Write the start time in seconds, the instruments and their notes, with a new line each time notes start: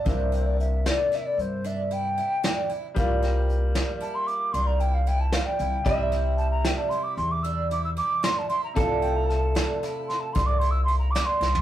0.04 upright bass C2, grand piano C3 A#3 D4 E4, twelve-string acoustic guitar D4, flute C5, kick, closed hi-hat
0.32 twelve-string acoustic guitar C4, closed hi-hat
0.46 flute D5
0.60 flute E5, closed hi-hat
0.86 twelve-string acoustic guitar D4, flute D5, snare, closed hi-hat
1.12 twelve-string acoustic guitar E4, flute E5, snare, closed hi-hat
1.26 flute D5
1.38 upright bass G2, flute C5, closed hi-hat
1.64 twelve-string acoustic guitar D4, flute E5, closed hi-hat
1.91 twelve-string acoustic guitar E4, flute G5, closed hi-hat
2.18 twelve-string acoustic guitar E4, closed hi-hat
2.43 twelve-string acoustic guitar D4, snare, closed hi-hat
2.70 twelve-string acoustic guitar E4, closed hi-hat
2.94 upright bass C2, grand piano G3 A#3 F4, twelve-string acoustic guitar D4, kick, closed hi-hat
3.23 twelve-string acoustic guitar C4, snare, closed hi-hat
3.49 closed hi-hat
3.75 twelve-string acoustic guitar D4, snare, closed hi-hat
4.01 twelve-string acoustic guitar E4, flute A5, closed hi-hat
4.15 flute C6
4.27 flute D6, closed hi-hat
4.53 upright bass C2, twelve-string acoustic guitar D4, flute C6, closed hi-hat
4.67 flute A#5
4.80 twelve-string acoustic guitar E4, flute G5, closed hi-hat
4.94 flute F5
5.06 twelve-string acoustic guitar E4, flute G5, closed hi-hat
5.20 flute A5
5.32 twelve-string acoustic guitar D4, flute F5, snare, closed hi-hat
5.46 flute G5
5.59 upright bass C2, twelve-string acoustic guitar E4, closed hi-hat
5.84 upright bass C2, grand piano C3 G3 E4, twelve-string acoustic guitar D4, clean electric guitar E5, kick, closed hi-hat
6.12 twelve-string acoustic guitar C4, snare, closed hi-hat
6.37 flute A5, closed hi-hat
6.51 flute A#5
6.65 twelve-string acoustic guitar D4, flute G5, snare, closed hi-hat
6.77 flute A5
6.90 twelve-string acoustic guitar E4, flute C6, closed hi-hat
7.03 flute D6
7.17 upright bass E2, flute C6, closed hi-hat
7.31 flute D6
7.43 twelve-string acoustic guitar D4, flute E6, closed hi-hat
7.71 twelve-string acoustic guitar E4, flute D6, closed hi-hat
7.85 flute E6
7.97 twelve-string acoustic guitar E4, flute D6, closed hi-hat
8.23 twelve-string acoustic guitar D4, flute C6, snare, closed hi-hat
8.39 flute A5
8.49 twelve-string acoustic guitar E4, flute C6, closed hi-hat
8.64 flute A#5
8.74 upright bass C2, grand piano C3 A3 E4 F4, twelve-string acoustic guitar D4, clean electric guitar A4, flute A5, kick, closed hi-hat
9.02 twelve-string acoustic guitar C4, flute G5, closed hi-hat
9.15 flute A#5
9.28 flute A5, snare, closed hi-hat
9.55 twelve-string acoustic guitar D4, snare, closed hi-hat
9.83 twelve-string acoustic guitar E4, snare, closed hi-hat
10.08 flute C6, snare, closed hi-hat
10.20 flute A5
10.33 upright bass C2, twelve-string acoustic guitar D4, flute C6, kick, closed hi-hat
10.46 flute D6
10.59 twelve-string acoustic guitar E4, flute C6, closed hi-hat
10.71 flute E6
10.84 twelve-string acoustic guitar E4, flute C6
10.89 closed hi-hat
10.99 flute A#5
11.11 twelve-string acoustic guitar D4, flute D6
11.16 snare, closed hi-hat
11.26 flute C6
11.41 upright bass C2, twelve-string acoustic guitar E4, snare
11.55 floor tom